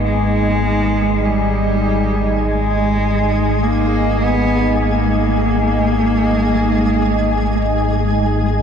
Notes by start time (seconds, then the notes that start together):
Already playing: G#1 G#2 G#3 D#4 D#5 G#5
0.03 G#3 G#5
1.25 G3
2.44 G#3
3.63 A#3
4.23 B3
4.82 A#3